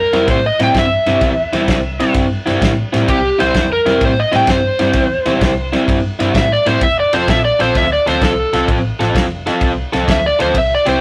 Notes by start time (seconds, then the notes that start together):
0.00 A#4
0.13 F2 C3 G3 C4 E4, snare, ride
0.28 A2 C5, kick, snare, ride
0.46 D#5
0.59 A2 C3 G3 C4 E4 G5, snare, ride
0.74 G2 E5, kick, snare, ride
1.06 G2 C3 G3 C4 E4, snare, ride
1.21 E2, kick, snare, ride
1.53 E2 C3 G3 C4 E4, snare, ride
1.68 C2, kick, snare, ride
2.00 C3 G3 C4 E4, snare, ride
2.14 G2, kick, snare, ride
2.46 G2 C3 G3 C4 E4, snare, ride
2.62 A2, kick, snare, ride
2.93 A2 C3 G3 C4 E4, snare, ride
3.08 C2 G4, kick, ride
3.39 C2 C3 G3 C4 E4 C5, snare, ride
3.54 kick, snare, ride
3.72 A#4
3.86 F2 C3 G3 C4 E4, snare, ride
4.01 A2, kick, ride
4.06 C5
4.20 D#5
4.32 A2 C3 G3 C4 E4 G5, snare, ride
4.47 G2 C5, kick, snare, ride
4.79 G2 C3 G3 C4 E4, snare, ride
4.93 kick, snare, ride
5.26 E2 C3 G3 C4 E4, snare, ride
5.41 C2, kick, snare, ride
5.73 C3 G3 C4 E4, snare, ride
5.88 G2, kick, ride
6.19 G2 C3 G3 C4 E4, snare, ride
6.35 A2 E5, kick, snare, ride
6.52 D5
6.66 A2 C3 G3 C4 E4 C5, snare, ride
6.81 F1 E5, kick, ride
7.00 D5
7.13 F1 F3 C4 F4 A4 C5, snare, ride
7.28 A#1 E5, kick, snare, ride
7.45 D5
7.60 A#1 F3 C4 F4 A4 C5, snare, ride
7.75 D2 E5, kick, snare, ride
7.93 D5
8.06 D2 F3 C4 F4 A4 C5, snare, ride
8.21 C2 A4, kick, snare, ride
8.53 C2 F3 C4 F4 A4, snare, ride
8.68 A1, kick, ride
9.00 A1 F3 C4 F4 A4, snare, ride
9.15 kick, snare, ride
9.46 F3 C4 F4 A4, snare, ride
9.61 C2, kick, ride
9.93 C2 F3 C4 F4 A4, snare, ride
10.08 D2 E5, kick, snare, ride
10.26 D5
10.39 D2 F3 C4 F4 A4 C5, snare, ride
10.54 C2 E5, kick, ride
10.75 D5
10.86 C2 C3 C4 E4 G4 C5, snare, ride